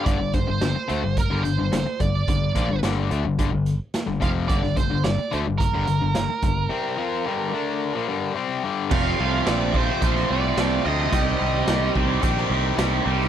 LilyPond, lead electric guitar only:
\new Staff \with { instrumentName = "Lead electric guitar" } { \time 4/4 \key g \minor \tempo 4 = 108 d''8 c''4. bes'8 c''4 d''8~ | d''4 r2 r8 f''8 | d''8 c''8 d''8 c''8 bes'2~ | bes'2. r4 |
f''4 d''8 c''8 c''8 d''4 ees''8~ | ees''4. r2 r8 | }